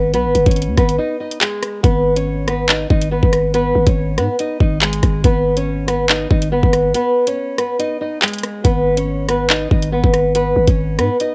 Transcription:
Already playing: G#1 B3 B4
0.14 B1 B3 B4, closed hi-hat
0.25 G#1
0.35 G1, closed hi-hat
0.46 G#1 C#4 C#5, kick, closed hi-hat
0.51 closed hi-hat
0.56 closed hi-hat
0.62 closed hi-hat
0.67 D#2
0.77 G#1 B3 B4, kick, cross-stick, closed hi-hat
0.89 closed hi-hat
0.98 D#4 D#5
1.20 D#4 D#5
1.31 closed hi-hat
1.41 G#3 G#4, clap, closed hi-hat
1.63 cross-stick, closed hi-hat
1.83 G#1 B3 B4, kick, closed hi-hat
2.16 C#4 C#5, closed hi-hat
2.48 B3 B4, cross-stick, closed hi-hat
2.69 D#4 D#5, clap, closed hi-hat
2.90 G#1 D#4 D#5, kick
3.02 closed hi-hat
3.11 B3 B4
3.23 G#1, kick
3.33 cross-stick, closed hi-hat
3.54 B3 B4, closed hi-hat
3.75 G#1
3.87 G#1 C#4 C#5, kick, closed hi-hat
4.18 G#2 B3 B4, cross-stick, closed hi-hat
4.39 D#4 D#5, closed hi-hat
4.60 G#1 D#4 D#5, kick
4.81 G#3 G#4, clap, closed hi-hat
4.93 closed hi-hat
5.03 G#1, kick, cross-stick, closed hi-hat
5.24 G#1 B3 B4, kick, closed hi-hat
5.57 C#4 C#5, closed hi-hat
5.88 B3 B4, cross-stick, closed hi-hat
6.09 D#4 D#5, clap, closed hi-hat
6.31 G#1 D#4 D#5, kick
6.42 closed hi-hat
6.52 G1 B3 B4
6.63 G#1, kick
6.73 cross-stick, closed hi-hat
6.94 B3 B4, closed hi-hat
7.27 C#4 C#5, closed hi-hat
7.58 B3 B4, cross-stick, closed hi-hat
7.79 D#4 D#5, closed hi-hat
8.01 D#4 D#5
8.22 G#3 G#4, clap, closed hi-hat
8.28 closed hi-hat
8.33 closed hi-hat
8.38 closed hi-hat
8.43 cross-stick, closed hi-hat
8.64 G#1 B3 B4, kick, closed hi-hat
8.97 C#4 C#5, closed hi-hat
9.29 B3 B4, cross-stick, closed hi-hat
9.50 D#4 D#5, clap, closed hi-hat
9.71 G#1 D#4 D#5, kick
9.82 closed hi-hat
9.92 B3 B4
10.04 G#1, kick
10.14 cross-stick, closed hi-hat
10.35 B3 B4, closed hi-hat
10.56 G#1
10.67 G#1 C#4 C#5, kick, closed hi-hat
10.99 G#2 B3 B4, cross-stick, closed hi-hat
11.20 D#4 D#5, closed hi-hat

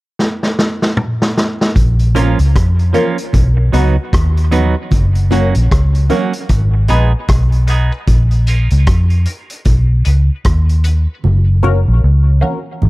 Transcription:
0.19 snare
0.43 snare
0.59 snare
0.82 snare
0.97 mid tom
1.22 snare
1.37 snare
1.61 snare
1.76 A#1, kick, closed hi-hat, low conga
1.99 closed hi-hat
2.15 F3 A#3 C#4 F4 A#4, closed hi-hat, low conga
2.39 C#2, closed hi-hat
2.55 F2, kick, cross-stick, closed hi-hat
2.79 closed hi-hat
2.93 F3 A#3 C#4 F4 A#4, closed hi-hat, high conga
3.18 closed hi-hat
3.33 B1, kick, closed hi-hat, high conga, low conga
3.57 muted clean electric guitar stroke
3.72 C#2 F#3 B3 D#4 F#4 B4, closed hi-hat, low conga
4.13 D#2, kick, cross-stick, closed hi-hat
4.37 closed hi-hat
4.51 F#3 B3 D#4 F#4 B4, closed hi-hat, high conga
4.91 F#1, kick, closed hi-hat, low conga
5.15 closed hi-hat
5.31 F#3 A#3 C#4 F#4 A#4, closed hi-hat, low conga
5.55 A#1, closed hi-hat
5.71 C#2, kick, cross-stick, closed hi-hat
5.95 closed hi-hat
6.10 F#3 A#3 C#4 F#4 A#4, closed hi-hat, high conga
6.33 closed hi-hat
6.49 G#1, kick, closed hi-hat, high conga, low conga
6.74 muted clean electric guitar stroke
6.88 A#1 G#3 B3 D#4 G#4 B4, closed hi-hat, low conga
7.28 B1, kick, cross-stick, closed hi-hat
7.52 closed hi-hat
7.67 G#3 B3 D#4 G#4 B4, closed hi-hat, high conga
7.91 B3 D#4 G#4 B4
8.07 A#1, kick, closed hi-hat, low conga
8.31 closed hi-hat
8.47 F3 A#3 C#4 F4 A#4, closed hi-hat, low conga
8.70 C#2, closed hi-hat
8.87 kick, cross-stick, closed hi-hat
9.10 closed hi-hat
9.25 A#3 C#4 F4 A#4, closed hi-hat, high conga
9.50 closed hi-hat
9.65 B1, kick, closed hi-hat, high conga, low conga
10.05 C#2 B3 D#4 F#4 B4, closed hi-hat, low conga
10.45 D#2, kick, cross-stick, closed hi-hat
10.69 closed hi-hat
10.84 B3 D#4 F#4 B4, closed hi-hat, high conga
11.24 F#1, low conga
11.63 A#3 C#4 F#4 A#4, low conga
11.88 A#1
12.04 C#2
12.41 A#3 C#4 F#4 A#4, high conga
12.82 G#1, high conga, low conga

